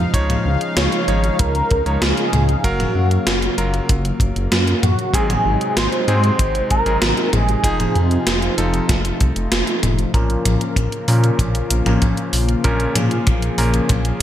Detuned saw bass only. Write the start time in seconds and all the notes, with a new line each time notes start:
0.14 C#2
0.45 C#2
0.77 C#2
1.08 G#1
1.40 C#2
1.71 C#2
1.86 C#2
2.02 C#2
2.33 C#2
2.64 F#1
2.95 F#2
3.27 F#1
3.58 F#1
3.89 F#1
4.20 F#1
4.36 F#1
4.52 F#2
4.83 F#2
5.14 G#1
5.45 G#1
5.77 G#1
6.08 G#2
6.39 G#1
6.71 G#1
6.86 G#1
7.02 G#1
7.33 G#1
7.64 F1
7.95 F2
8.27 F1
8.58 F1
8.89 F1
9.21 C2
9.36 F1
9.52 F1
9.83 F1
10.14 A#1
10.46 A#1
10.76 A#1
11.08 A#2
11.39 A#1
11.71 A#1
11.86 A#1
12.02 A#1
12.33 A#1
12.65 A#1
12.95 A#2
13.27 A#1
13.58 A#1
13.90 A#1